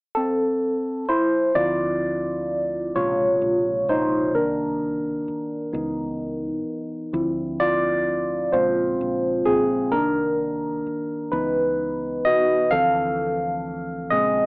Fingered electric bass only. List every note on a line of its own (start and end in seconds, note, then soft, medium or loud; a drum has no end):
1.56 2.91 D2 medium
2.96 3.37 A#1 medium
3.42 3.83 A#1 medium
3.89 4.34 A#1 medium
4.34 5.23 C2 medium
5.28 muted fingered electric bass stroke soft
5.74 6.62 C#2 medium
7.14 8.48 D2 medium
8.54 8.95 A#1 medium
9.01 9.42 A#1 medium
9.47 9.93 A#1 medium
9.93 10.81 C2 medium
10.87 muted fingered electric bass stroke soft
11.33 12.21 C#2 medium
12.73 14.07 D2 medium
14.12 14.46 A#1 medium